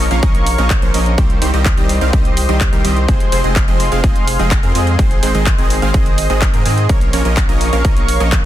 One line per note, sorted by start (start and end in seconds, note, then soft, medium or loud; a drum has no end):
0.00 1.16 A#4 medium
0.00 1.16 C#5 medium
0.00 1.16 F5 medium
0.00 1.16 C#6 medium
0.11 0.20 A#1 medium
0.11 0.20 F3 medium
0.11 0.20 A#3 medium
0.11 0.20 C#4 medium
0.11 0.20 A#4 medium
0.11 0.20 F5 loud
0.11 closed hi-hat soft
0.23 0.56 A#1 loud
0.23 0.44 F3 medium
0.23 0.44 A#3 medium
0.23 0.44 C#4 medium
0.23 0.44 A#4 medium
0.23 0.44 D#5 loud
0.23 kick loud
0.23 closed hi-hat medium
0.35 closed hi-hat soft
0.46 open hi-hat loud
0.58 0.80 A#1 loud
0.58 0.79 F3 medium
0.58 0.79 A#3 medium
0.58 0.79 C#4 medium
0.58 0.79 A#4 medium
0.58 0.79 D#5 medium
0.58 closed hi-hat soft
0.70 kick loud
0.70 clap loud
0.70 closed hi-hat medium
0.82 0.92 A#1 medium
0.82 0.91 F3 medium
0.82 0.91 A#3 medium
0.82 0.91 C#4 medium
0.82 0.91 A#4 medium
0.82 0.91 C5 medium
0.82 closed hi-hat soft
0.94 1.16 A#1 loud
0.94 1.14 F3 medium
0.94 1.14 A#3 medium
0.94 1.14 C#4 medium
0.94 1.14 A#4 medium
0.94 1.14 D#5 medium
0.94 open hi-hat loud
1.06 closed hi-hat soft
1.18 1.39 C2 medium
1.18 1.39 D#3 medium
1.18 1.39 G3 medium
1.18 1.39 C4 medium
1.18 1.39 G4 medium
1.18 3.07 G4 medium
1.18 1.39 C5 medium
1.18 4.95 C5 medium
1.18 3.07 D#5 medium
1.18 6.85 C6 medium
1.18 kick loud
1.18 closed hi-hat medium
1.30 closed hi-hat soft
1.42 1.51 C2 loud
1.42 1.51 D#3 medium
1.42 1.51 G3 medium
1.42 1.51 C4 medium
1.42 1.51 G4 medium
1.42 1.51 C5 medium
1.42 open hi-hat loud
1.54 1.75 C2 loud
1.54 1.75 D#3 medium
1.54 1.75 G3 medium
1.54 1.75 C4 medium
1.54 1.75 G4 medium
1.54 1.75 D#5 medium
1.54 closed hi-hat soft
1.65 kick loud
1.65 clap loud
1.65 closed hi-hat medium
1.77 1.99 C2 loud
1.77 1.99 D#3 loud
1.77 1.98 G3 medium
1.77 1.98 C4 medium
1.77 1.99 G4 medium
1.77 1.99 D#5 loud
1.77 closed hi-hat soft
1.89 open hi-hat medium
2.01 2.11 C2 medium
2.01 2.10 D#3 medium
2.01 2.10 G3 medium
2.01 2.10 C4 medium
2.01 2.10 G4 medium
2.01 2.10 F5 loud
2.01 closed hi-hat soft
2.13 2.47 C2 loud
2.13 2.34 D#3 medium
2.13 2.34 G3 medium
2.13 2.34 C4 medium
2.13 2.34 G4 medium
2.13 kick loud
2.13 closed hi-hat medium
2.25 closed hi-hat soft
2.37 open hi-hat loud
2.49 2.70 C2 loud
2.49 2.69 D#3 medium
2.49 2.69 G3 medium
2.49 2.69 C4 medium
2.49 2.69 G4 medium
2.49 2.69 D#5 medium
2.49 closed hi-hat soft
2.61 kick loud
2.61 clap loud
2.61 closed hi-hat medium
2.73 2.82 C2 medium
2.73 2.82 D#3 medium
2.73 2.82 G3 medium
2.73 2.82 C4 medium
2.73 2.82 G4 medium
2.73 2.82 A#4 medium
2.73 closed hi-hat soft
2.85 3.06 C2 loud
2.85 3.05 D#3 medium
2.85 3.05 G3 medium
2.85 3.05 C4 medium
2.85 3.05 G4 medium
2.85 3.05 D#5 medium
2.85 open hi-hat loud
2.96 closed hi-hat soft
3.08 3.30 F1 medium
3.08 3.29 F3 medium
3.08 3.29 G#3 medium
3.08 3.29 C4 medium
3.08 3.29 G#4 medium
3.08 6.86 G#4 medium
3.08 3.29 C5 medium
3.08 4.97 F5 medium
3.08 kick loud
3.08 closed hi-hat medium
3.20 closed hi-hat soft
3.32 3.42 F1 loud
3.32 3.41 F3 medium
3.32 3.41 G#3 medium
3.32 3.41 C4 medium
3.32 3.41 G#4 medium
3.32 3.41 C5 loud
3.32 open hi-hat loud
3.44 3.66 F1 loud
3.44 3.65 F3 medium
3.44 3.65 G#3 medium
3.44 3.65 C4 medium
3.44 3.65 G#4 medium
3.44 3.65 D#5 medium
3.44 closed hi-hat soft
3.56 kick loud
3.56 clap loud
3.56 closed hi-hat medium
3.68 3.89 F1 medium
3.68 3.89 F3 loud
3.68 3.89 G#3 medium
3.68 3.89 C4 medium
3.68 3.89 G#4 medium
3.68 3.89 D#5 loud
3.68 closed hi-hat soft
3.80 open hi-hat medium
3.92 4.01 F1 loud
3.92 4.01 F3 medium
3.92 4.01 G#3 medium
3.92 4.01 C4 medium
3.92 4.01 G#4 medium
3.92 4.01 F5 loud
3.92 closed hi-hat soft
4.04 4.37 F1 loud
4.04 4.25 G#3 medium
4.04 4.25 C4 medium
4.04 4.25 G#4 medium
4.04 4.25 D#5 loud
4.04 kick loud
4.04 closed hi-hat medium
4.16 closed hi-hat soft
4.27 open hi-hat loud
4.39 4.61 F1 loud
4.39 4.60 F3 medium
4.39 4.60 G#3 medium
4.39 4.60 C4 medium
4.39 4.60 G#4 medium
4.39 4.60 D#5 medium
4.39 closed hi-hat soft
4.51 kick loud
4.51 clap loud
4.51 closed hi-hat medium
4.63 4.73 F2 loud
4.63 4.72 F3 medium
4.63 4.72 G#3 medium
4.63 4.72 C4 medium
4.63 4.72 G#4 medium
4.63 4.72 A#4 medium
4.63 closed hi-hat soft
4.75 4.97 F2 medium
4.75 4.95 F3 medium
4.75 4.95 G#3 medium
4.75 4.95 C4 medium
4.75 4.95 G#4 medium
4.75 4.95 D#5 medium
4.75 open hi-hat loud
4.87 closed hi-hat soft
4.99 5.20 G#1 loud
4.99 5.20 D#3 medium
4.99 5.20 G#3 medium
4.99 5.20 C4 medium
4.99 5.20 G#4 medium
4.99 6.88 C5 medium
4.99 5.20 C5 medium
4.99 6.88 D#5 medium
4.99 kick loud
4.99 closed hi-hat medium
5.11 closed hi-hat soft
5.23 5.32 G#1 loud
5.23 5.32 D#3 medium
5.23 5.32 G#3 medium
5.23 5.32 C4 medium
5.23 5.32 G#4 medium
5.23 5.32 C5 medium
5.23 open hi-hat loud
5.35 5.56 G#1 loud
5.35 5.56 D#3 medium
5.35 5.56 G#3 medium
5.35 5.56 C4 medium
5.35 5.56 G#4 medium
5.35 5.56 D#5 medium
5.35 closed hi-hat soft
5.46 kick loud
5.46 clap loud
5.46 closed hi-hat medium
5.58 5.80 G#1 loud
5.58 5.79 D#3 loud
5.58 5.79 G#3 medium
5.58 5.79 C4 medium
5.58 5.79 G#4 medium
5.58 5.79 D#5 loud
5.58 closed hi-hat soft
5.70 open hi-hat loud
5.82 5.92 G#1 medium
5.82 5.91 D#3 medium
5.82 5.91 G#3 medium
5.82 5.91 C4 medium
5.82 5.91 G#4 medium
5.82 5.91 F5 loud
5.82 closed hi-hat soft
5.94 6.28 G#1 loud
5.94 6.15 D#3 medium
5.94 6.15 G#3 medium
5.94 6.15 C4 medium
5.94 6.15 G#4 medium
5.94 6.15 D#5 loud
5.94 kick loud
5.94 closed hi-hat medium
6.06 closed hi-hat soft
6.18 open hi-hat loud
6.30 6.51 G#1 loud
6.30 6.50 D#3 medium
6.30 6.50 G#3 medium
6.30 6.50 C4 medium
6.30 6.50 G#4 medium
6.30 6.50 D#5 medium
6.30 closed hi-hat soft
6.42 kick loud
6.42 clap loud
6.42 closed hi-hat medium
6.54 6.63 G#2 loud
6.54 6.63 D#3 medium
6.54 6.63 G#3 medium
6.54 6.63 C4 medium
6.54 6.63 G#4 medium
6.54 6.63 A#4 medium
6.54 closed hi-hat soft
6.66 6.87 G#2 loud
6.66 6.86 D#3 medium
6.66 6.86 G#3 medium
6.66 6.86 C4 medium
6.66 6.86 G#4 medium
6.66 6.86 D#5 medium
6.66 open hi-hat medium
6.77 closed hi-hat soft
6.89 7.11 A#1 medium
6.89 7.10 F3 medium
6.89 7.10 A#3 medium
6.89 7.10 C#4 medium
6.89 8.45 A#4 medium
6.89 7.10 A#4 medium
6.89 7.10 C#5 medium
6.89 8.45 C#5 medium
6.89 8.45 F5 medium
6.89 8.45 C#6 medium
6.89 kick loud
6.89 closed hi-hat medium
7.01 closed hi-hat soft
7.13 7.23 A#1 loud
7.13 7.22 F3 medium
7.13 7.22 A#3 medium
7.13 7.22 C#4 medium
7.13 7.22 A#4 medium
7.13 7.22 C#5 loud
7.13 open hi-hat loud
7.25 7.47 A#1 loud
7.25 7.46 F3 medium
7.25 7.46 A#3 medium
7.25 7.46 C#4 medium
7.25 7.46 A#4 medium
7.25 7.46 D#5 medium
7.25 closed hi-hat soft
7.37 kick loud
7.37 clap loud
7.37 closed hi-hat medium
7.49 7.70 A#1 medium
7.49 7.70 F3 loud
7.49 7.70 A#3 medium
7.49 7.70 C#4 medium
7.49 7.70 A#4 medium
7.49 7.70 D#5 loud
7.49 closed hi-hat soft
7.61 open hi-hat medium
7.73 7.82 A#1 medium
7.73 7.82 F3 medium
7.73 7.82 A#3 medium
7.73 7.82 C#4 medium
7.73 7.82 A#4 medium
7.73 7.82 F5 loud
7.73 closed hi-hat soft
7.85 8.18 A#1 loud
7.85 8.06 F3 medium
7.85 8.06 A#3 medium
7.85 8.06 C#4 medium
7.85 8.06 A#4 medium
7.85 8.06 D#5 loud
7.85 kick loud
7.85 closed hi-hat medium
7.97 closed hi-hat soft
8.08 open hi-hat loud
8.20 8.42 A#1 loud
8.20 8.41 F3 medium
8.20 8.41 A#3 medium
8.20 8.41 C#4 medium
8.20 8.41 A#4 medium
8.20 8.41 D#5 medium
8.20 closed hi-hat soft
8.32 kick loud
8.32 clap loud
8.32 closed hi-hat medium